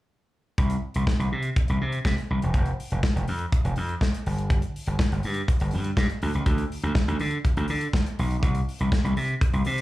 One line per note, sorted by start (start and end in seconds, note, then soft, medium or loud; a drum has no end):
0.58 0.75 C2 medium
0.58 kick loud
0.58 closed hi-hat medium
0.70 closed hi-hat soft
0.94 1.04 C2 medium
0.94 closed hi-hat soft
1.07 kick loud
1.07 snare loud
1.19 1.28 C2 medium
1.19 closed hi-hat soft
1.32 1.49 C3 medium
1.43 closed hi-hat soft
1.56 kick loud
1.56 closed hi-hat medium
1.68 1.78 C2 medium
1.68 closed hi-hat soft
1.81 1.98 C3 loud
1.92 closed hi-hat soft
2.05 2.14 C3 medium
2.05 kick loud
2.05 snare loud
2.18 closed hi-hat soft
2.30 2.39 C2 medium
2.42 2.51 E1 medium
2.42 closed hi-hat soft
2.54 2.71 F1 medium
2.54 kick loud
2.54 closed hi-hat medium
2.66 closed hi-hat soft
2.80 open hi-hat medium
2.90 3.00 F1 medium
2.90 closed hi-hat soft
3.03 kick loud
3.03 snare loud
3.16 3.24 F1 medium
3.16 closed hi-hat soft
3.28 3.45 F2 medium
3.28 open hi-hat medium
3.39 closed hi-hat soft
3.52 kick loud
3.52 closed hi-hat medium
3.65 3.73 F1 medium
3.65 closed hi-hat soft
3.76 3.94 F2 loud
3.76 open hi-hat medium
3.89 closed hi-hat soft
4.01 kick loud
4.01 snare loud
4.14 closed hi-hat soft
4.26 4.60 G1 medium
4.26 open hi-hat medium
4.38 closed hi-hat soft
4.50 kick loud
4.50 closed hi-hat medium
4.62 closed hi-hat soft
4.76 open hi-hat medium
4.86 4.96 G1 medium
4.86 closed hi-hat soft
4.99 kick loud
4.99 snare loud
5.12 5.20 G1 medium
5.12 closed hi-hat soft
5.23 5.41 G2 medium
5.23 open hi-hat medium
5.34 closed hi-hat soft
5.48 kick loud
5.48 closed hi-hat medium
5.60 5.75 G1 loud
5.60 closed hi-hat soft
5.71 5.90 G2 loud
5.71 open hi-hat medium
5.84 closed hi-hat medium
5.97 6.06 G2 loud
5.97 kick loud
5.97 snare loud
6.10 closed hi-hat soft
6.22 6.31 D2 loud
6.22 open hi-hat medium
6.34 6.43 C#2 medium
6.34 closed hi-hat soft
6.46 6.63 D2 loud
6.46 kick loud
6.46 closed hi-hat medium
6.58 closed hi-hat soft
6.72 open hi-hat medium
6.82 6.92 D2 medium
6.82 closed hi-hat soft
6.95 kick loud
6.95 snare loud
7.08 7.16 D2 medium
7.08 closed hi-hat soft
7.19 7.37 D3 loud
7.19 open hi-hat medium
7.31 closed hi-hat soft
7.45 kick loud
7.45 closed hi-hat medium
7.57 7.66 D2 medium
7.57 closed hi-hat soft
7.68 7.87 D3 loud
7.68 open hi-hat medium
7.81 closed hi-hat medium
7.93 kick loud
7.93 snare loud
8.06 closed hi-hat medium
8.19 8.36 B1 medium
8.19 open hi-hat medium
8.31 closed hi-hat soft
8.43 8.60 C2 medium
8.43 kick loud
8.43 closed hi-hat medium
8.55 closed hi-hat soft
8.69 open hi-hat medium
8.79 8.89 C2 medium
8.79 closed hi-hat soft
8.92 kick loud
8.92 snare loud
9.04 9.13 C2 medium
9.04 closed hi-hat soft
9.17 9.34 C3 medium
9.17 open hi-hat medium
9.28 closed hi-hat soft
9.41 kick loud
9.41 closed hi-hat medium
9.53 9.62 C2 medium
9.53 closed hi-hat soft
9.65 9.81 C3 loud
9.65 open hi-hat medium
9.78 closed hi-hat medium